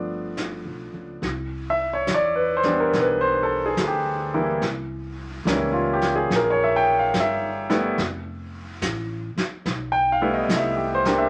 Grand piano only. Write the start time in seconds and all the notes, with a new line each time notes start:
Already playing: F3 A3 B3 D4 D5
1.70 E5
1.93 C#5
2.14 D5
2.36 B4
2.57 C5
2.64 E3 G3 B3 D4
2.80 A#4
3.00 B4
3.21 C5
3.43 A4
3.66 G#4
3.88 G4
4.34 E3 G3 A#3 E4
5.47 E3 G3 A#3 C#4
5.53 E4
5.73 F4
5.94 G4
6.16 G#4
6.36 A#4
6.50 C#5
6.64 E5
6.76 G5
6.99 F5
7.20 E5
7.70 G3 A3 B3 E4
9.92 G5
10.12 F5
10.21 G3 A3 B3 E4
10.34 D#5
10.56 E5
10.77 G4
10.95 C5
11.06 G3 A#3 D4 G4
11.18 E5